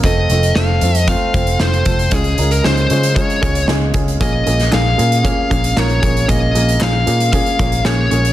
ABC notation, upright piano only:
X:1
M:4/4
L:1/8
Q:1/4=115
K:Db
V:1 name="Upright piano"
[=A,CF=A] [A,CFA] [A,CFA] [A,CFA] [A,CFc] [A,CFc] [A,CFc] [A,CFA] | [A,DFA] [A,DFB] [A,DFA] [A,DFA] [A,DFA] [A,DFA] [A,DFA] [A,DFA] | [B,DFA] [B,DFA] [B,DFA] [B,DFA] [B,DFA] [B,DFA] [B,DFB] [B,DFA] | [B,DFA] [B,DFA] [B,DFA] [B,DFA] [B,DFA] [B,DFA] [B,DFA] [B,DFA] |]
V:2 name="Upright piano" clef=bass
z8 | D,3 z4 z | B,,3 z4 z | B,,3 z4 z |]